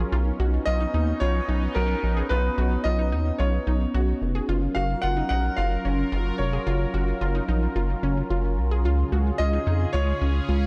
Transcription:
Already playing: analog synth pad C#4
0.12 analog synth bass B1, analog synth pad B3 D#4, synth pluck F4
0.40 analog synth bass B1, synth pluck F#4
0.66 analog synth bass B1, synth pluck F4, grand piano D#5
0.81 synth pluck D#4
0.94 analog synth bass D#2, synth pluck D#4
1.20 analog synth bass B1, synth pluck F4, grand piano C#5
1.49 analog synth bass B1, synth pluck D#4
1.75 analog synth bass B1, synth pluck F#4, grand piano A#4
2.03 analog synth bass A#1
2.17 synth pluck G#4
2.29 analog synth bass B1, synth pluck F4, grand piano B4
2.58 analog synth bass B1, synth pluck F#4
2.84 analog synth bass B1, synth pluck F4, grand piano D#5
2.99 synth pluck D#4
3.12 analog synth bass D#2, synth pluck D#4
3.38 analog synth bass B1, synth pluck F4, grand piano C#5
3.67 analog synth bass B1, synth pluck D#4
3.94 analog synth bass B1, synth pluck F#4
4.22 analog synth bass F1
4.35 synth pluck G#4
4.49 analog synth bass F#1, analog synth pad F#3 F4 A#4, synth pluck F4
4.75 analog synth bass F#1, synth pluck F#4, grand piano F5
5.02 analog synth bass F#1, synth pluck F4, grand piano F#5
5.17 synth pluck D#4
5.29 analog synth bass A#1, synth pluck D#4, grand piano F#5
5.57 analog synth bass F#1, synth pluck F4, grand piano F5
5.85 analog synth bass F#1, synth pluck C#4
6.12 analog synth bass F#1, synth pluck F4
6.38 analog synth bass F1, grand piano C#5
6.53 synth pluck G#4
6.67 analog synth bass F#1, synth pluck F4
6.94 analog synth bass F#1, synth pluck F#4
7.21 analog synth bass F#1, synth pluck F4
7.35 synth pluck D#4
7.48 analog synth bass A#1, synth pluck D#4
7.76 analog synth bass F#1, synth pluck F4
8.03 analog synth bass F#1, synth pluck C#4
8.30 analog synth bass F#1, synth pluck F4
8.58 analog synth bass B1
8.71 synth pluck G#4
8.85 analog synth bass C#2, analog synth pad C#3 C#4 G#4, synth pluck F4
9.12 analog synth bass C#2, synth pluck F#4
9.38 analog synth bass C#2, synth pluck F4, grand piano D#5
9.53 synth pluck D#4
9.67 analog synth bass F2, synth pluck D#4
9.93 analog synth bass C#2, synth pluck F4, grand piano C#5
10.21 analog synth bass C#2, synth pluck C#4
10.49 analog synth bass C#2, synth pluck F4

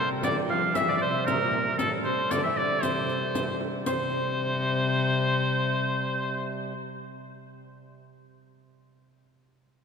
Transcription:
Already playing: viola da gamba C3, harmonium C3 G3, harp A#4 D5 F5 G5
0.23 viola da gamba D3, shawm D5, harp D5, riq, frame drum
0.48 viola da gamba F3, shawm F5, harp F5, frame drum
0.74 viola da gamba E3 F3, shawm E5, harp E5, riq, frame drum
0.81 viola da gamba E3
0.87 viola da gamba D3, shawm D5, harp D5
0.92 viola da gamba D3, shawm E5
0.96 shawm D5, harp D5
1.01 viola da gamba C3, shawm C5, harp C5
1.26 viola da gamba A#2, shawm A#4, harp A#4, riq, frame drum
1.33 viola da gamba A2
1.40 viola da gamba A#2
1.53 frame drum
1.78 viola da gamba A2, shawm A4, harp A4, riq, frame drum
2.04 viola da gamba C3, shawm C5, harp C5
2.31 viola da gamba D3, shawm D5, harp D5, riq, frame drum
2.44 viola da gamba E3, shawm E5, harp E5
2.57 viola da gamba D3, shawm D5, harp D5, frame drum
2.82 viola da gamba C3, shawm C5, harp C5, riq, frame drum
3.09 riq, frame drum
3.35 riq, frame drum
3.61 frame drum
3.86 harmonium C3 G3, viola da gamba C3, shawm C5, harp C5, riq, frame drum

